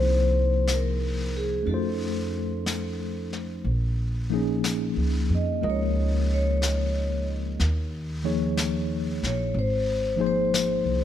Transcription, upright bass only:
0.00 1.62 C2 medium
1.66 3.61 F2 medium
3.64 4.93 A#1 medium
4.96 5.27 C#2 medium
5.30 5.60 F2 medium
5.63 7.55 C#2 medium
7.60 9.18 D#2 medium
9.23 9.53 A#1 medium
9.54 10.80 G#1 medium
10.85 11.04 C2 medium

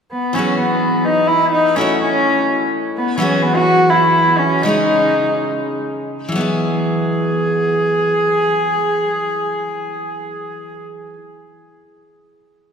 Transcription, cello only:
0.11 0.36 B3 medium
0.35 0.57 C#4 medium
0.58 1.06 B3 medium
1.05 1.29 D#4 medium
1.27 1.52 E4 medium
1.52 1.77 D#4 medium
1.76 2.00 C#4 medium
2.01 2.68 C#4 medium
2.96 3.18 B3 medium
3.19 3.44 C#4 medium
3.42 3.56 B3 medium
3.55 3.91 F#4 loud
3.90 4.40 E4 medium
4.38 4.64 C#4 medium
4.62 5.72 D#4 medium
6.33 10.80 G#4 medium

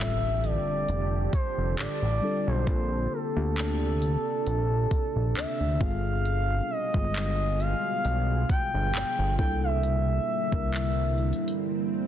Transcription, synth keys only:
0.00 2.21 G3 medium
0.00 2.22 C4 medium
0.00 2.23 D4 medium
0.00 2.23 F4 medium
0.00 2.24 A4 medium
2.21 2.60 G3 medium
2.21 2.60 C4 medium
2.21 2.61 D4 medium
2.21 2.61 F4 medium
2.21 2.61 A4 medium
2.66 3.23 A#3 medium
2.66 3.24 C4 medium
2.66 3.24 D4 medium
2.66 3.24 F4 medium
2.66 3.25 A4 medium
3.35 4.84 A#3 medium
3.35 4.84 C4 medium
3.35 4.84 D4 medium
3.35 4.85 F4 medium
3.35 4.85 G4 medium
5.79 6.73 G3 medium
5.79 6.74 B3 medium
5.79 6.74 D4 medium
5.79 6.74 F4 medium
5.79 6.75 G#4 medium
6.93 8.42 D3 medium
6.93 8.42 G3 medium
6.93 7.00 G#3 medium
6.93 8.43 F4 medium
6.93 8.43 G#4 medium
7.01 8.45 B3 medium
9.38 10.32 G3 medium
9.38 10.32 A#3 medium
9.38 10.32 D4 medium
9.38 10.33 E4 medium
9.38 10.33 A4 medium
10.51 12.00 G3 medium
10.51 12.00 A#3 medium
10.51 12.00 D4 medium
10.51 12.01 E4 medium
10.51 12.01 A#4 medium

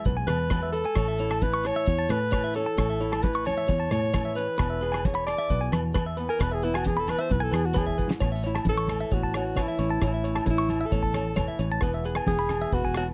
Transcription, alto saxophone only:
0.27 0.70 B4 loud
0.72 1.44 A4 loud
1.42 1.68 B4 loud
1.67 2.12 C#5 loud
2.11 2.55 B4 loud
2.56 3.24 A4 loud
3.23 3.46 B4 medium
3.46 3.89 C#5 loud
3.92 4.34 C#5 loud
4.36 5.07 B4 medium
5.05 5.26 C#5 medium
5.27 5.69 D5 loud
6.30 6.43 A#4 loud
6.42 6.55 B4 medium
6.53 6.66 G#4 loud
6.64 6.78 E4 medium
6.76 6.89 F#4 medium
6.87 7.01 G#4 medium
7.00 7.11 A4 medium
7.10 7.22 B4 loud
7.21 7.33 C5 loud
7.32 7.45 B4 medium
7.43 7.55 A4 medium
7.54 7.68 G#4 medium
7.66 7.79 F#4 medium
7.78 8.11 G#4 medium
8.69 9.15 A4 loud
9.14 9.35 F#4 medium
9.37 9.63 F#4 medium
9.62 10.04 E4 medium
10.07 10.47 E4 medium
10.50 10.88 E4 medium
10.86 11.62 A4 medium
12.27 12.76 G#4 loud
12.74 12.96 F#4 loud
12.97 13.07 F#4 medium

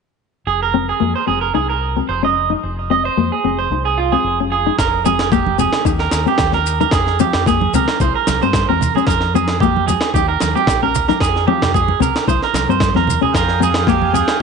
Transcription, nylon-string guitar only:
0.74 0.95 C4 medium
1.00 1.21 A#3 medium
1.27 1.48 C4 medium
1.54 1.75 D#4 medium
1.96 2.17 C4 medium
2.23 2.44 C#4 medium
2.50 2.60 D#4 medium
2.90 3.11 C4 medium
3.17 3.38 A#3 medium
3.44 3.65 C4 medium
3.72 3.92 D#4 medium
4.12 4.33 C4 medium
4.40 4.60 C#4 medium
4.67 4.76 D#4 medium
5.06 5.26 C4 medium
5.32 5.53 A#3 medium
5.58 5.79 C4 medium
5.85 6.06 D#4 medium
6.26 6.47 C4 medium
6.52 6.73 C#4 medium
6.80 6.90 D#4 medium
7.20 7.40 C4 medium
7.47 7.67 A#3 medium
7.75 7.94 C4 medium
8.01 8.21 E4 medium
8.43 8.62 C4 medium
8.70 8.89 C4 medium
8.97 9.05 C#4 medium
9.35 9.55 C4 medium
9.62 9.82 A#3 medium
9.90 muted nylon-string guitar stroke medium
10.16 10.35 D#4 medium
10.56 10.76 C4 medium
10.83 11.03 C#4 medium
11.09 11.18 D#4 medium
11.48 11.68 C4 medium
11.75 muted nylon-string guitar stroke medium
12.00 12.21 C4 medium
12.28 12.48 E4 medium
12.69 12.89 C4 medium
12.96 13.16 C4 medium
13.21 13.31 C#4 medium
13.60 13.81 C4 medium
13.88 14.08 A#3 medium
14.13 14.34 C4 medium

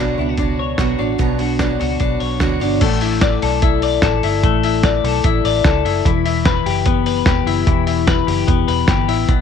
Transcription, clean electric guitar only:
0.00 1.18 B2 medium
0.00 0.39 D4 medium
0.00 0.18 F#4 medium
0.00 0.58 C#5 medium
0.19 0.29 E4 medium
0.29 0.78 F#4 soft
0.39 0.99 D4 medium
0.59 2.19 C#5 medium
0.79 1.39 F#4 medium
0.99 1.60 D4 medium
1.19 2.82 B2 medium
1.40 1.79 F#4 soft
1.60 2.00 D4 medium
1.80 2.40 F#4 medium
2.00 2.61 D4 medium
2.20 2.85 C#5 medium
2.41 2.86 F#4 medium
2.62 3.02 D4 medium
2.82 4.43 A3 medium
3.02 3.62 E4 medium
3.22 3.82 D5 medium
3.43 4.02 A4 medium
3.63 4.24 E4 medium
3.83 4.84 D5 medium
4.04 5.04 A4 medium
4.24 4.64 E4 medium
4.44 6.05 A3 medium
4.64 5.24 E4 medium
4.85 5.44 D5 medium
5.05 5.64 A4 medium
5.25 5.85 E4 medium
5.45 6.09 D5 medium
5.65 6.09 A4 medium
5.85 6.25 E4 medium
6.06 7.66 E3 medium
6.26 7.46 E4 medium
6.46 7.06 B4 medium
6.66 7.25 G4 medium
6.86 8.47 B3 medium
7.06 8.07 B4 medium
7.26 8.26 G4 medium
7.47 7.86 E4 medium
7.67 9.29 E3 medium
7.87 9.07 E4 medium
8.07 8.68 B4 medium
8.27 8.87 G4 medium
8.47 9.41 B3 medium
8.68 9.41 B4 medium
8.88 9.33 G4 medium
9.09 9.33 E4 medium
9.29 9.41 B2 medium

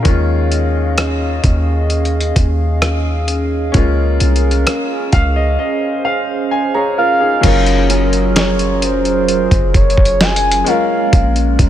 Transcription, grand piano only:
0.03 3.69 D#3 medium
0.03 3.70 G#3 medium
0.03 3.70 C#4 medium
0.08 3.72 F4 medium
3.72 7.39 G#3 medium
3.72 7.40 A#3 medium
3.72 7.38 C#4 medium
3.77 6.49 F4 medium
5.13 5.34 F5 medium
5.36 5.57 D#5 medium
5.59 6.02 D#5 medium
6.05 6.48 F5 medium
6.51 6.73 G#5 medium
6.74 6.97 G#4 medium
6.74 6.96 C#5 medium
6.74 7.40 A#5 medium
6.98 7.20 F4 medium
6.98 7.20 A#4 medium
7.20 7.65 D#4 medium
7.20 7.64 G#4 medium
7.41 10.61 F#3 medium
7.41 10.62 A#3 medium
7.41 10.63 C#4 medium
7.41 10.63 F4 medium
7.46 10.64 A#4 medium
10.64 11.69 G#3 medium
10.64 11.69 A#3 medium
10.64 11.69 C#4 medium
10.64 11.69 F4 medium
10.69 11.69 A#4 medium

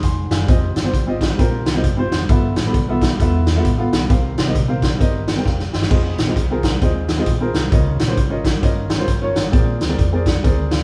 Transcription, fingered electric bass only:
0.03 0.27 F1 medium
0.31 0.46 F#1 medium
0.49 0.72 F1 loud
0.76 0.91 G1 medium
0.93 1.32 G#1 medium
1.39 1.66 A#1 medium
1.66 1.85 C2 medium
1.84 2.07 G1 medium
2.11 2.26 F1 medium
2.29 2.53 G1 loud
2.57 2.72 A1 medium
2.74 3.13 B1 medium
3.20 3.58 E2 medium
3.64 3.88 A1 medium
3.93 4.08 B1 medium
4.10 4.34 C2 loud
4.37 4.52 G#1 medium
4.55 4.94 A#1 medium
5.01 5.39 G1 medium
5.46 5.69 F1 medium
5.73 5.88 G1 medium
5.91 6.14 F1 loud
6.19 6.34 A#1 medium
6.36 6.75 C2 medium
6.82 7.20 D#2 medium
7.27 7.50 A#1 medium
7.54 7.69 C2 medium
7.72 7.96 C#2 loud
8.00 8.15 A#1 medium
8.17 8.56 G#1 medium
8.63 9.01 G1 medium
9.08 9.31 G1 medium
9.36 9.51 G#1 medium
9.53 9.77 A#1 loud
9.82 9.96 D2 medium
9.98 10.37 F2 medium
10.44 10.83 D2 medium

